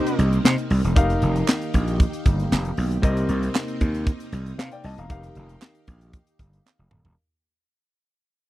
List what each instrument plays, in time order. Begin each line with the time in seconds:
Already playing: string machine C3 A#3 D#4, grand piano C4 G4 A#4 D#5, analog polysynth D#4 G4 C5
0.07 closed hi-hat
0.19 slap bass C2, closed hi-hat
0.33 closed hi-hat
0.45 slap bass C3, snare, clap
0.58 closed hi-hat
0.70 slap bass C2, open hi-hat
0.84 slap bass E1, closed hi-hat
0.96 slap bass F1, string machine D#3 A#3 G4, grand piano D#4 G4 A#4 F5, kick, closed hi-hat
1.10 closed hi-hat
1.22 slap bass F1, closed hi-hat
1.36 closed hi-hat
1.48 snare, clap
1.50 clap
1.61 closed hi-hat
1.74 slap bass A#1, kick, closed hi-hat
1.88 closed hi-hat
2.00 kick, closed hi-hat
2.13 closed hi-hat
2.26 slap bass G1, kick, closed hi-hat
2.40 closed hi-hat
2.52 slap bass F1, snare, clap
2.65 closed hi-hat
2.77 slap bass B1, open hi-hat
2.91 closed hi-hat
3.02 slap bass C2, string machine C3 D#4, grand piano C4 G4 A#4 D#5, kick, closed hi-hat
3.17 closed hi-hat
3.29 slap bass C2, closed hi-hat
3.43 closed hi-hat
3.55 snare, clap
3.57 clap
3.68 closed hi-hat
3.81 slap bass D#2, kick, closed hi-hat
3.94 closed hi-hat
4.07 kick, closed hi-hat
4.20 closed hi-hat
4.32 slap bass C2, closed hi-hat
4.46 closed hi-hat
4.58 slap bass C3, grand piano C5 F5, snare, clap
4.71 grand piano D5 G5, closed hi-hat
4.84 slap bass C2, grand piano D#5 A5, open hi-hat
4.98 slap bass E1, grand piano F5 A#5, closed hi-hat
5.09 slap bass F1, string machine D#3 G4, grand piano D#4 G4 A#4 F5, kick, closed hi-hat
5.23 closed hi-hat
5.35 slap bass F1, closed hi-hat
5.49 closed hi-hat
5.62 snare, clap
5.75 closed hi-hat
5.87 slap bass A#1, kick, closed hi-hat
6.01 closed hi-hat
6.13 kick, closed hi-hat
6.27 closed hi-hat
6.39 slap bass G1, kick, closed hi-hat
6.53 closed hi-hat
6.66 snare, clap
6.79 slap bass F1
6.91 slap bass D#1, mid tom
7.05 slap bass E1, floor tom